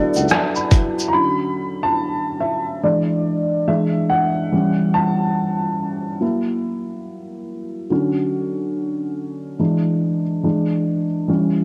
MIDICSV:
0, 0, Header, 1, 5, 480
1, 0, Start_track
1, 0, Key_signature, 2, "major"
1, 0, Tempo, 845070
1, 650, Time_signature, 4, 2, 24, 8
1, 6614, End_track
2, 0, Start_track
2, 0, Title_t, "Flute"
2, 0, Program_c, 0, 73
2, 0, Note_on_c, 0, 74, 93
2, 415, Note_off_c, 0, 74, 0
2, 6614, End_track
3, 0, Start_track
3, 0, Title_t, "Upright piano"
3, 0, Program_c, 1, 0
3, 0, Control_c, 1, 64, 127
3, 0, Note_on_c, 1, 54, 82
3, 0, Note_on_c, 1, 59, 70
3, 0, Note_on_c, 1, 62, 77
3, 0, Note_on_c, 1, 64, 75
3, 0, Note_on_c, 1, 69, 86
3, 0, Note_on_c, 1, 71, 65
3, 0, Note_on_c, 1, 76, 66
3, 0, Note_on_c, 1, 78, 78
3, 69, Note_off_c, 1, 76, 0
3, 93, Note_off_c, 1, 78, 0
3, 93, Note_on_c, 1, 78, 62
3, 168, Note_off_c, 1, 78, 0
3, 186, Note_on_c, 1, 81, 61
3, 317, Note_on_c, 1, 83, 64
3, 322, Note_off_c, 1, 81, 0
3, 614, Note_on_c, 1, 82, 75
3, 624, Note_off_c, 1, 54, 0
3, 624, Note_off_c, 1, 83, 0
3, 629, Note_off_c, 1, 59, 0
3, 634, Note_off_c, 1, 62, 0
3, 640, Note_off_c, 1, 64, 0
3, 642, Note_on_c, 1, 83, 102
3, 644, Note_on_c, 1, 50, 46
3, 646, Note_off_c, 1, 69, 0
3, 646, Note_off_c, 1, 82, 0
3, 648, Note_on_c, 1, 54, 49
3, 651, Note_on_c, 1, 61, 55
3, 658, Control_c, 1, 64, 0
3, 663, Note_off_c, 1, 71, 0
3, 763, Control_c, 1, 64, 127
3, 1040, Note_on_c, 1, 81, 86
3, 1053, Note_off_c, 1, 83, 0
3, 1344, Note_off_c, 1, 50, 0
3, 1345, Note_off_c, 1, 81, 0
3, 1346, Note_off_c, 1, 54, 0
3, 1348, Note_off_c, 1, 61, 0
3, 1366, Note_on_c, 1, 76, 72
3, 1609, Note_on_c, 1, 52, 49
3, 1611, Note_on_c, 1, 74, 74
3, 1613, Note_on_c, 1, 56, 44
3, 1615, Note_off_c, 1, 76, 0
3, 1616, Control_c, 1, 64, 0
3, 1616, Note_on_c, 1, 62, 53
3, 1702, Control_c, 1, 64, 127
3, 2067, Note_off_c, 1, 52, 0
3, 2069, Note_off_c, 1, 56, 0
3, 2070, Note_off_c, 1, 62, 0
3, 2087, Note_on_c, 1, 52, 43
3, 2090, Note_on_c, 1, 76, 68
3, 2091, Note_on_c, 1, 56, 45
3, 2095, Note_on_c, 1, 62, 49
3, 2097, Control_c, 1, 64, 0
3, 2105, Note_off_c, 1, 74, 0
3, 2182, Control_c, 1, 64, 127
3, 2327, Note_on_c, 1, 78, 81
3, 2337, Note_off_c, 1, 76, 0
3, 2434, Note_off_c, 1, 52, 0
3, 2436, Note_off_c, 1, 56, 0
3, 2438, Note_off_c, 1, 62, 0
3, 2568, Note_on_c, 1, 52, 56
3, 2571, Note_on_c, 1, 55, 50
3, 2575, Note_on_c, 1, 61, 55
3, 2578, Control_c, 1, 64, 0
3, 2671, Control_c, 1, 64, 127
3, 2786, Note_off_c, 1, 78, 0
3, 2805, Note_on_c, 1, 81, 84
3, 3265, Note_off_c, 1, 81, 0
3, 3506, Note_off_c, 1, 52, 0
3, 3508, Note_off_c, 1, 55, 0
3, 3510, Note_off_c, 1, 61, 0
3, 3524, Note_on_c, 1, 54, 46
3, 3530, Note_on_c, 1, 58, 45
3, 3532, Note_on_c, 1, 64, 55
3, 3538, Control_c, 1, 64, 0
3, 3630, Control_c, 1, 64, 127
3, 4464, Note_off_c, 1, 54, 0
3, 4467, Note_off_c, 1, 58, 0
3, 4468, Note_off_c, 1, 64, 0
3, 4488, Note_on_c, 1, 50, 56
3, 4494, Note_on_c, 1, 54, 48
3, 4497, Control_c, 1, 64, 0
3, 4497, Note_on_c, 1, 61, 58
3, 4600, Control_c, 1, 64, 127
3, 5426, Note_off_c, 1, 50, 0
3, 5429, Note_off_c, 1, 54, 0
3, 5431, Note_off_c, 1, 61, 0
3, 5449, Note_on_c, 1, 52, 48
3, 5452, Note_on_c, 1, 56, 45
3, 5456, Note_on_c, 1, 62, 50
3, 5458, Control_c, 1, 64, 0
3, 5540, Control_c, 1, 64, 127
3, 5795, Note_off_c, 1, 52, 0
3, 5797, Note_off_c, 1, 56, 0
3, 5799, Note_off_c, 1, 62, 0
3, 5925, Note_on_c, 1, 52, 46
3, 5930, Note_on_c, 1, 56, 46
3, 5932, Note_on_c, 1, 62, 53
3, 5938, Control_c, 1, 64, 0
3, 6038, Control_c, 1, 64, 127
3, 6273, Note_off_c, 1, 52, 0
3, 6276, Note_off_c, 1, 56, 0
3, 6277, Note_off_c, 1, 62, 0
3, 6407, Note_on_c, 1, 52, 51
3, 6410, Note_on_c, 1, 55, 46
3, 6414, Note_on_c, 1, 61, 55
3, 6417, Control_c, 1, 64, 0
3, 6521, Control_c, 1, 64, 127
3, 6614, Note_off_c, 1, 52, 0
3, 6614, Note_off_c, 1, 55, 0
3, 6614, Note_off_c, 1, 61, 0
3, 6614, End_track
4, 0, Start_track
4, 0, Title_t, "Tuba"
4, 0, Program_c, 2, 58
4, 88, Note_on_c, 2, 37, 82
4, 161, Note_off_c, 2, 37, 0
4, 6614, End_track
5, 0, Start_track
5, 0, Title_t, "Drums"
5, 78, Note_on_c, 9, 82, 51
5, 89, Note_off_c, 9, 82, 0
5, 89, Note_on_c, 9, 82, 52
5, 146, Note_off_c, 9, 82, 0
5, 160, Note_on_c, 9, 82, 64
5, 169, Note_off_c, 9, 82, 0
5, 169, Note_on_c, 9, 82, 68
5, 178, Note_on_c, 9, 37, 99
5, 226, Note_off_c, 9, 82, 0
5, 235, Note_off_c, 9, 37, 0
5, 314, Note_on_c, 9, 82, 45
5, 370, Note_off_c, 9, 82, 0
5, 404, Note_on_c, 9, 42, 69
5, 404, Note_on_c, 9, 82, 54
5, 405, Note_off_c, 9, 82, 0
5, 405, Note_on_c, 9, 82, 51
5, 407, Note_on_c, 9, 36, 90
5, 461, Note_off_c, 9, 42, 0
5, 462, Note_off_c, 9, 82, 0
5, 464, Note_off_c, 9, 36, 0
5, 561, Note_on_c, 9, 82, 43
5, 563, Note_off_c, 9, 82, 0
5, 563, Note_on_c, 9, 82, 49
5, 620, Note_off_c, 9, 82, 0
5, 6614, End_track
0, 0, End_of_file